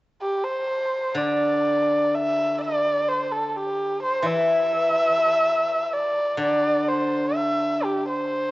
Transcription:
0.22 G4
0.44 C5
1.15 D3 D5
2.14 E5
2.61 D5
3.08 C5
3.31 A4
3.48 A4
3.56 G4
4.03 C5
4.23 E3 E5
5.93 D5
6.37 D3 D5
6.89 C5
7.35 E5
7.84 G4
8.09 C5

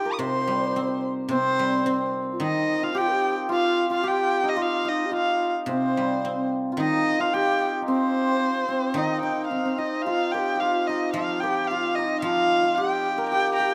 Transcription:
Already playing: D#3 D#4 F4 G4 G5
0.05 A#4
0.13 D#6
0.19 C3 C5 D#5 C6
0.24 C5
0.34 C5
0.42 C5
0.47 G3 C5
0.57 C5
0.65 C5
0.72 C4 C5
0.81 C5
0.88 C5
1.29 C3 C4 C5
1.59 G3
1.84 C4
2.32 F4
2.39 D#3 D#4 F4 D#5
2.83 F4 F5
2.94 G4 G5
3.01 F4
3.08 G4 A#4
3.48 F4
3.53 F5
3.89 F4
3.94 F5
4.02 G4
4.07 G5
4.43 D#4
4.49 D#5
4.56 F4
4.62 F5
4.85 D#4 F4 D#5
4.89 D#4
5.06 G4
5.11 F4
5.16 F5
5.66 C3 C4
5.72 C5
5.97 G3
6.25 C4
6.72 F4
6.77 D#3 D#4 D#5
7.19 F4 F5
7.33 G4 G5
7.82 D#4
7.87 C4 C5
8.68 C4
8.94 D#3 D#4 D#5
9.22 D#4 G5
9.47 C4 F5
9.64 C4
9.78 D#4 F4 D#5
10.02 F4 G4 F5
10.10 F4
10.32 G4 A#4 G5
10.39 G4
10.55 G4
10.60 F4 F5
10.87 D#4 D#5
11.14 F3 F4 F5
11.40 G4 A#4 G5
11.47 G4
11.67 F4 F5
11.72 G4
11.76 F4
11.95 D#4 D#5
12.00 D#4
12.21 F3 F4 F5
12.25 F4
12.63 F4
12.75 G4 G5
12.79 G4
13.18 A#4
13.30 G4 G5
13.53 G5 A#5
13.60 G4

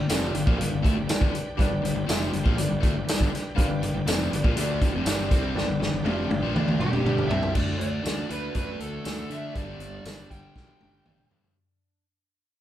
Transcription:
Already playing: D4 G4 B4 G5
0.09 F1 F2 C3 F3 D4 G4 B4 D5, snare, closed hi-hat, tambourine
0.33 G1 G2 D3 D4 G4 B4 F5, closed hi-hat
0.47 A#1 A#2 F3, kick
0.56 G1 G2 D3 D4 G4 B4 F5
0.61 closed hi-hat
0.70 G1 G2 D3
0.82 D2 D3 A3, kick, closed hi-hat
0.95 G1 G2 D3
1.07 D4 G4 B4 D5, muted overdriven electric guitar stroke, snare, closed hi-hat, tambourine
1.11 muted fingered electric bass stroke
1.20 G1 G2 D3, kick
1.32 muted overdriven electric guitar stroke, muted fingered electric bass stroke, closed hi-hat
1.57 G1 G2 D3 D4 G4 B4 D5, kick, closed hi-hat
1.69 G1 G2 D3
1.82 G1 G2 D3, closed hi-hat
1.95 G1 G2 D3
2.06 F1 F2 C3 F3 D4 G4 B4 E5, snare, closed hi-hat, tambourine
2.31 G1 G2 D3 D4 G4 B4 D5, closed hi-hat
2.44 A#1 A#2 F3, kick
2.56 G1 G2 D3 D4 G4 B4 D5, closed hi-hat
2.68 G1 G2 D3
2.80 D2 D3 A3, kick, closed hi-hat
2.93 G1 G2 D3
3.05 D4 G4 B4 D5, muted overdriven electric guitar stroke, muted fingered electric bass stroke, closed hi-hat, tambourine
3.10 snare
3.18 G1 G2 D3, kick
3.31 muted overdriven electric guitar stroke, muted fingered electric bass stroke, closed hi-hat
3.36 snare
3.55 G1 G2 D3 D4 G4 B4 F5, kick, closed hi-hat
3.59 G4 D5 G5
3.68 G1 G2 D3
3.81 G1 G2 D3, closed hi-hat
3.94 G1 G2 D3
4.06 F1 F2 C3 F3 D4 G4 B4 D5, snare, closed hi-hat, tambourine
4.31 G1 G2 D3 D4 G4 B4 D5, closed hi-hat
4.44 A#1 A#2 F3, kick
4.55 D2 D3 A3 D4 G4 B4 D5, closed hi-hat
4.81 G1 G2 D3, kick, closed hi-hat
4.92 F1 F2 C3
5.04 G1 G2 D3 G3 D4 G4 B4 D5, snare, closed hi-hat, tambourine
5.30 C2 C3 G3 C4, kick, snare, closed hi-hat
5.54 G1 G2 D3 D4 G4 B4 D5, snare
5.68 G1 G2 D3
5.80 G1 G2 D3, snare
5.92 G1 G2 D3
6.03 F1 F2 C3 F3 D4 G4 B4 D5, high tom
6.28 G1 G2 D3 D4 G4 B4 D5, high tom
6.42 A#1 A#2 F3
6.53 D2 D3 A3 D4 G4 B4 D5, mid tom
6.68 mid tom
6.79 G1 G2 D3 G4, mid tom
6.91 F1 F2 C3, mid tom
7.04 G1 G2 D3 G3 D4 G4 B4 D5, mid tom
7.18 floor tom
7.28 C2 C3 G3 C4 E5, floor tom
7.43 floor tom
7.54 D2 D3 A3 D4 D5, kick, crash
7.79 D2 D5, closed hi-hat
8.03 D2 D3 A3 D4, snare, closed hi-hat, tambourine
8.29 D2 D3 A3 D4 B4, closed hi-hat
8.54 F#2 D3 A3 D4 B4, kick, closed hi-hat
8.80 D2 A4, closed hi-hat
9.05 D2 D3 A3 D4, snare, closed hi-hat, tambourine
9.30 D3 A3 D4 E5, closed hi-hat
9.55 G1 G2 D3 G3 D5, kick, closed hi-hat
9.79 G1, closed hi-hat
10.04 G1 G2 D3 G3 D5, snare, closed hi-hat, tambourine
10.30 G1 G2 D3 G3 G5, kick, closed hi-hat
10.55 B1 G2 D3 G3, kick, snare
10.81 G1, high tom
11.05 G1 G2 D3 G3, mid tom
11.18 mid tom
11.30 G2 D3 G3, floor tom
11.44 floor tom

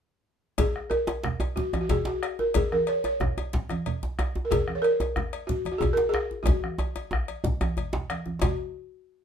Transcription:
0.58 G#4, bombo low, cowbell, djembe slap, djembe tone, high conga, djembe bass, low conga
0.76 bombo rim
0.90 A#4, cowbell, djembe tone
1.07 bombo rim, cowbell, djembe slap, djembe tone
1.24 bombo rim, djembe slap, low conga
1.40 cowbell, djembe tone
1.56 F#4, bombo low, djembe slap, high conga
1.73 bombo rim, cowbell, djembe tone, high conga
1.81 F#4
1.89 G#4, cowbell, djembe slap, djembe bass, low conga
2.05 F#4, djembe slap
2.23 bombo rim, cowbell
2.39 A#4, djembe tone
2.54 G#4, bombo low, cowbell, djembe slap, high conga, djembe bass, low conga
2.72 A#4, bombo rim, high conga
2.87 C#5, cowbell
3.04 C#5, bombo rim, cowbell, djembe slap, djembe tone
3.20 bombo rim, djembe slap, djembe tone, djembe bass, low conga
3.38 cowbell, djembe tone
3.53 bombo low, djembe slap, high conga
3.69 bombo rim, cowbell, djembe tone, high conga
3.86 cowbell, low conga
4.03 djembe slap, djembe tone
4.19 bombo rim, cowbell, djembe tone
4.35 djembe tone
4.45 A#4
4.51 G#4, bombo low, cowbell, djembe slap, high conga, djembe bass, low conga
4.68 bombo rim, high conga
4.75 C#5
4.82 A#4, cowbell
5.00 bombo rim, cowbell, djembe slap, djembe tone
5.16 bombo rim, djembe slap, djembe bass, low conga
5.33 cowbell
5.47 F#4, bombo low, djembe slap, high conga
5.65 cowbell, high conga, djembe tone
5.71 F#4
5.78 G#4, cowbell, djembe tone, djembe bass, low conga
5.93 A#4
5.97 djembe slap
6.09 G#4
6.14 bombo rim, djembe slap
6.31 djembe tone
6.43 F#4, cowbell, djembe tone, low conga
6.47 bombo rim, bombo low, djembe slap, djembe bass
6.63 bombo rim, high conga
6.79 cowbell, djembe tone
6.96 bombo rim, cowbell, djembe slap, djembe tone
7.11 bombo rim, djembe slap, djembe tone, high conga, djembe bass
7.28 cowbell, high conga
7.44 bombo low, djembe slap, djembe tone
7.61 bombo rim, cowbell, djembe tone, high conga
7.77 cowbell, djembe slap, djembe bass, low conga
7.93 djembe slap, low conga
8.10 bombo rim, cowbell, high conga
8.26 bombo rim, djembe tone, high conga
8.42 F#4, bombo low, cowbell, djembe slap, djembe bass, low conga

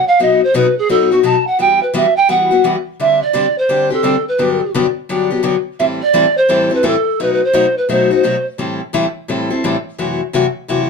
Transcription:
0.08 F5
0.19 B2 F#3 B3 D#4 F#4 D#5
0.43 C5
0.54 B2 F#3 B3 D#4 F#4 B4
0.78 G#4
0.89 B2 F#3 B3 D#4 F#4 A4
1.11 B3 D#4 F#4
1.23 B2 F#3 B3 D#4 F#4 A5
1.47 F#5
1.59 E3 G3 B3 F#4 G5
1.82 B4
1.94 E3 G3 B3 F#4 E5
2.16 G5
2.29 E3 G3 B3 F#4 F#5
2.51 G3 B3 F#4
2.64 E3 G3 B3 F#4
3.00 D3 G3 C4 D4 G4 E5
3.22 D5
3.33 D3 G3 C4 D4 G4
3.58 C5
3.69 D3 G3 C4 D4 G4
3.90 C4 D4 G4 A4
4.03 D3 G3 C4 D4 G4
4.28 B4
4.38 G2 D3 F#3 B3 D4 G4
4.74 G2 D3 F#3 B3 D4 G4
5.09 G2 D3 F#3 B3 D4 G4
5.30 F#3 B3 D4 G4
5.43 G2 D3 F#3 B3 D4 G4
5.79 A2 E3 G3 C4 E4 A4 E5
6.02 D5
6.13 A2 E3 G3 C4 E4 A4
6.37 C5
6.49 A2 E3 G3 C4 E4 A4
6.70 G3 C4 E4 A4
6.74 B4
6.83 A2 E3 G3 C4 E4 A4
7.20 B2 F#3 A3 D#4 F#4 B4
7.32 B4
7.44 C5
7.53 B2 F#3 A3 D#4 F#4
7.77 B4
7.89 B2 F#3 A3 D#4 F#4 C5
8.11 A3 D#4 F#4 C5
8.24 B2 F#3 A3 D#4 F#4
8.58 A2 E3 G3 C4 E4 A4
8.93 A2 E3 G3 C4 E4 A4
9.28 A2 E3 G3 C4 E4 A4
9.50 G3 C4 E4 A4
9.64 A2 E3 G3 C4 E4 A4
9.98 F#2 C3 E3 A3 E4 F#4
10.33 F#2 C3 E3 A3 E4 F#4
10.68 F#2 C3 E3 A3 E4 F#4

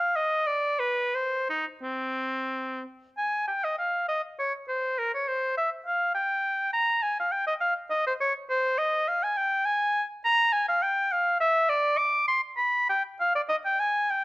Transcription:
Already playing: F5
0.16 D#5
0.47 D5
0.80 B4
1.15 C5
1.50 D#4
1.83 C4
3.18 G#5
3.48 G5
3.64 D#5
3.78 F5
4.09 D#5
4.39 C#5
4.68 C5
4.98 A#4
5.14 C#5
5.28 C5
5.57 E5
5.87 F5
6.15 G5
6.73 A#5
7.03 G#5
7.20 F5
7.32 G5
7.47 D#5
7.61 F5
7.90 D#5
8.07 C5
8.21 C#5
8.50 C5
8.78 D#5
9.08 F5
9.23 G#5
9.37 G5
9.66 G#5
10.25 A#5
10.52 G#5
10.68 F5
10.82 G5
11.12 F5
11.40 E5
11.69 D5
11.98 D6
12.28 C6
12.58 B5
12.89 G5
13.20 F5
13.35 D5
13.49 D#5
13.66 G5
13.80 G#5
14.10 G5

